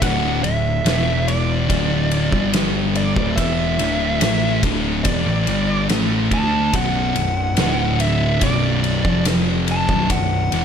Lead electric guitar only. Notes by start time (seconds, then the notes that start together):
0.03 F#5
0.44 E5
1.28 D5
2.97 D5
3.36 E5
5.04 D5
6.34 A5
6.76 F#5
8.01 E5
8.43 D5
9.71 A5
10.11 F#5